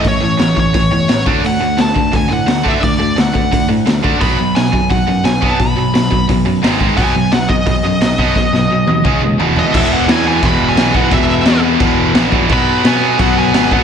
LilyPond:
<<
  \new Staff \with { instrumentName = "Lead electric guitar" } { \time 4/4 \key e \major \tempo 4 = 174 cis''4. cis''2 r8 | fis''4 a''4 gis''8 fis''4 e''8 | d''4 fis''4. r4. | b''4 gis''4 fis''4 gis''8. a''16 |
b''2 r2 | gis''4 fis''8 dis''2~ dis''8~ | dis''2. r8 dis''8 | e''8 fis''8 gis''8 gis''8 b''8. gis''8. fis''8 |
e''4. r2 r8 | b''4 gis''4 fis''8 gis''4 fis''8 | }
  \new Staff \with { instrumentName = "Distorted electric guitar" } { \clef bass \time 4/4 \key e \major <a, e>8 <a, e>8 <a, e>8 <a, e>8 <a, e>8 <a, e>8 <a, e>8 <d a d'>8 | <d a>8 <d a>8 <d a>8 <d a>8 <d a>8 <d a>8 <d a>8 <d a d'>8 | <d a>8 <d a>8 <d a>8 <d a>8 <d a>8 <d a>8 <d a>8 <d a d'>8 | <b, fis b>8 <b, fis>8 <b, fis>8 <b, fis>8 <b, fis>8 <b, fis>8 <b, fis>8 <b, fis b>8 |
<b, fis>8 <b, fis>8 <b, fis>8 <b, fis>8 <b, fis>8 <b, fis>8 <gis, dis gis>8 <gis, dis gis>8 | <b, fis b>8 <b, fis>8 <b, fis>8 <b, fis>8 <b, fis>8 <b, fis>8 <b, fis>8 <b, fis b>8 | <b, fis>8 <b, fis>8 <b, fis>8 <b, fis>8 <cis gis cis'>8 <cis gis>8 <e, b, e>8 <e, b, e>8 | <e, b, e>4 <e, b, e>8 <e, b, e>8 <e, b, e>4 <e, b, e>8 <e, b, e>8 |
<e, b, e>4 <e, b, e>8 <e, b, e>8 <e, b, e>4 <e, b, e>8 <e, b, e>8 | <b, fis b>4 <b, fis b>8 <b, fis b>8 <b, fis b>4 <b, fis b>8 <b, fis b>8 | }
  \new Staff \with { instrumentName = "Overdriven electric guitar" } { \clef bass \time 4/4 \key e \major <a, e>8 <a, e>8 <a, e>8 <a, e>8 <a, e>8 <a, e>8 <a, e>8 <d a d'>8 | <d a>8 <d a>8 <d a>8 <d a>8 <d a>8 <d a>8 <d a>8 <d a d'>8 | <d a>8 <d a>8 <d a>8 <d a>8 <d a>8 <d a>8 <d a>8 <d a d'>8 | <b, fis b>8 <b, fis>8 <b, fis>8 <b, fis>8 <b, fis>8 <b, fis>8 <b, fis>8 <b, fis b>8 |
<b, fis>8 <b, fis>8 <b, fis>8 <b, fis>8 <b, fis>8 <b, fis>8 <gis, dis gis>8 <gis, dis gis>8 | <b, fis b>8 <b, fis>8 <b, fis>8 <b, fis>8 <b, fis>8 <b, fis>8 <b, fis>8 <b, fis b>8 | <b, fis>8 <b, fis>8 <b, fis>8 <b, fis>8 <cis gis cis'>8 <cis gis>8 <e, b, e>8 <e, b, e>8 | <e, b, e>4 <e, b, e>8 <e, b, e>8 <e, b, e>4 <e, b, e>8 <e, b, e>8 |
<e, b, e>4 <e, b, e>8 <e, b, e>8 <e, b, e>4 <e, b, e>8 <e, b, e>8 | <b, fis b>4 <b, fis b>8 <b, fis b>8 <b, fis b>4 <b, fis b>8 <b, fis b>8 | }
  \new Staff \with { instrumentName = "Distorted electric guitar" } { \clef bass \time 4/4 \key e \major r1 | r1 | r1 | r1 |
r1 | r1 | r1 | <e, b, e>2.~ <e, b, e>8 <e, b, e>8 |
<e, b, e>2.~ <e, b, e>8 <e, b, e>8 | <b, fis b>2.~ <b, fis b>8 <b, fis b>8 | }
  \new Staff \with { instrumentName = "Picked electric bass" } { \clef bass \time 4/4 \key e \major a,,8 a,,8 a,,8 a,,8 a,,8 e,8 a,,8 d,8 | d,8 d,8 d,8 d,8 d,8 a,8 d,4 | d,8 d,8 d,8 d,8 d,8 a,8 d,4 | b,,8 b,,8 b,,8 b,,8 b,,8 fis,8 b,,4 |
b,,8 b,,8 b,,8 b,,8 b,,8 fis,8 gis,,4 | b,,8 b,,8 b,,8 b,,8 b,,8 fis,8 b,,4 | b,,8 b,,8 b,,8 dis,8 cis,8 dis,8 e,,4 | e,,4 e,4 e,,8 e,,8 b,,4 |
e,,4 e,4 e,,8 e,,8 ais,,4 | b,,4 b,4 b,,8 b,,8 gis,,4 | }
  \new DrumStaff \with { instrumentName = "Drums" } \drummode { \time 4/4 <hho bd>4 <hho sn>8 bd8 <hho bd>4 <hho sn>8 bd8 | hho4 <hho sn>8 bd8 <hho bd>4 <hho sn>8 bd8 | <hho bd>4 <hho sn>8 bd8 <hho bd>4 <hho sn>8 bd8 | <hho bd>4 <hho sn>8 bd8 <hho bd>4 <hho sn>8 bd8 |
<hho bd>4 <hho sn>8 bd8 <hho bd>4 <hho sn>8 bd8 | <hho bd>4 <hho sn>8 bd8 <hho bd>4 <hho sn>8 bd8 | <bd sn>8 sn8 r8 tommh8 <bd toml>4 tomfh8 tomfh8 | <cymc bd>4 <cymc sn>4 <cymc bd>4 <cymc sn>8 bd8 |
<cymc bd>4 <cymc sn>4 <cymc bd>4 <cymc sn>8 bd8 | <cymc bd>4 <cymc sn>4 <cymc bd>4 <cymc sn>8 bd8 | }
>>